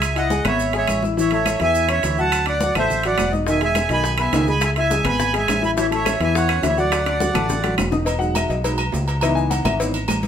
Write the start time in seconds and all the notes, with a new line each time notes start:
Already playing: C#2 G#3 G#4 E5 G#5
0.02 high conga, high timbale, claves, maracas
0.15 E4 D#5 E5 F#5 E6, high conga, high timbale, maracas
0.30 G#3 G#4 G#5, high conga, maracas
0.45 G#1 B3 B4 C#5 E5 B5, high conga, low conga, high timbale, claves, maracas
0.59 high conga, maracas
0.73 G#3 G#4 G#5, high timbale, maracas
0.77 C#5 E5
0.87 A1, high conga, high timbale, claves, maracas
1.03 E4 E5 E6, high conga, maracas
1.17 E3 E4 C#5 E5, high conga, maracas
1.31 A3 A4 C#5 E5 A5, high conga, high timbale, maracas
1.46 high conga, high timbale, claves, maracas
1.60 E2 E3 E4 E5 G#5, high conga, high timbale, maracas
1.74 high conga, maracas
1.88 C#4 C#5 E5 C#6, high conga, high timbale, claves, maracas
2.03 D2 E3 E4 E5, high conga, high timbale, maracas
2.18 F#3 F#4 F#5 A5, maracas
2.32 high conga, high timbale, claves, maracas
2.46 D4 D5 F#5 D6, high conga, high timbale, maracas
2.61 F#3 F#4 F#5, high conga, maracas
2.75 A1 A3 A4 C5 E5 A5, high conga, low conga, high timbale, claves, maracas
2.90 high conga, low conga, maracas
3.04 F#3 F#4 D5 F#5, high timbale, maracas
3.18 E1, high conga, high timbale, low timbale, claves, maracas
3.32 D#4 D#5 D#6, high conga, maracas
3.47 D#3 D#4 D#5 E5 G#5, high bongo, maracas
3.61 G#3 G#4 E5 G#5, high bongo, high conga, high timbale, maracas
3.75 high bongo, high conga, high timbale, claves, maracas
3.89 B1 D#3 D#4 D#5 G#5 B5, high conga, high timbale, maracas
4.04 high bongo, high conga, maracas
4.18 B3 B4 E5 G#5 B5, high bongo, high conga, high timbale, claves, maracas
4.33 C#2 D#3 D#4 D#5, high bongo, low bongo, high timbale, low timbale, maracas
4.47 G#3 G#4 G#5 B5, high bongo, high conga, maracas
4.61 E5 G#5, high bongo, high conga, high timbale, claves, maracas
4.76 E4 E5 G#5 E6, high bongo, high conga, high timbale, maracas
4.91 G#3 G#4 G#5, high bongo, high conga, maracas
5.04 G#1 B3 B4 G#5 B5, high conga, low conga, high timbale, claves, maracas
5.08 B5
5.19 high bongo, high conga, low conga, maracas
5.33 G#3 G#4 G#5, high bongo, high conga, high timbale, maracas
5.37 E5 G#5
5.48 A1, high bongo, low bongo, high conga, high timbale, low timbale, claves, maracas
5.62 E4 E5 G#5 B5 E6, high bongo, high conga, maracas
5.76 E3 E4 E5, high bongo, high conga, maracas
5.81 C#5 E5
5.91 A3 A4 C#5 E5 A5, high bongo, high conga, high timbale, maracas
6.06 high bongo, high conga, high timbale, claves, maracas
6.20 E2 E3 E4 E5 G#5, high conga, high timbale, maracas
6.35 C#5 F#5, high bongo, high conga, maracas
6.49 C#4 C#5 C#6, high bongo, high timbale, claves, maracas
6.62 D2 E3 E4 C#5 E5, high bongo, low bongo, high timbale, low timbale, maracas
6.77 F#3 F#4 D5 F#5, high bongo, maracas
6.92 high bongo, high conga, high timbale, claves, maracas
7.06 D4 D5 D6, high bongo, high conga, high timbale, maracas
7.20 F#3 F#4 F#5, high bongo, high conga, maracas
7.33 A1 A3 A4 A5, high conga, low conga, high timbale, claves, maracas
7.49 high bongo, high conga, low conga, maracas
7.62 F#3 F#4 F#5, high bongo, high conga, high timbale, maracas
7.78 E1, low bongo, high conga, high timbale, low timbale, claves, maracas
7.91 D#4 D#5 D#6, low bongo, low conga, maracas
8.05 D#5, cowbell, high conga, low agogo, maracas
8.18 F#3 G#3 D#4 F#5, high conga, maracas
8.35 E5, cowbell, high conga, low agogo, claves, maracas
8.49 B1 D#5, cowbell, high conga, maracas
8.64 F#3 G#3 D#4 B4, cowbell, high conga, low agogo, maracas
8.78 high conga, low agogo, claves, maracas
8.92 C#2, cowbell, low timbale, maracas
9.08 cowbell, low agogo, maracas
9.21 E3 B3 D#4 E5, cowbell, high conga, low agogo, claves, maracas
9.35 G#5, high conga, maracas
9.50 F#5, cowbell, high conga, low agogo, maracas
9.65 G#1 E5, cowbell, high conga, low conga, low agogo, claves, maracas
9.79 E3 B3 D#4 C#5, cowbell, high conga, maracas
9.94 high conga, low agogo, maracas
10.08 A1, cowbell, high conga, low timbale, low agogo, claves, maracas
10.23 cowbell, high conga, maracas